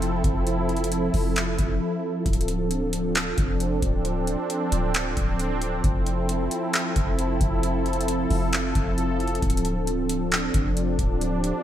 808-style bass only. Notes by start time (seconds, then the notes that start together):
Already playing: F1
0.24 F1
1.14 F1
1.59 F1
2.26 D1
3.38 F1
3.82 D1
4.72 D1
5.17 D1
5.84 F1
6.96 F1
7.41 F1
8.30 F1
8.75 F1
9.42 D1
10.54 F1
10.99 D1